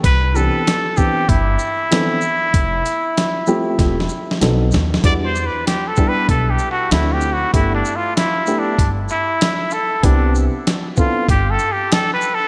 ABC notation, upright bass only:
X:1
M:4/4
L:1/16
Q:"Swing 16ths" 1/4=96
K:Clyd
V:1 name="Upright bass" clef=bass
C,,3 z4 z G,,,2 z6 | =F,,,2 z6 E,,,2 z2 B,,,2 ^D,,2 | E,,3 z4 z B,,,2 z2 D,,4 | G,,,2 z6 G,,,2 z6 |
C,,3 z4 z G,,,2 z6 |]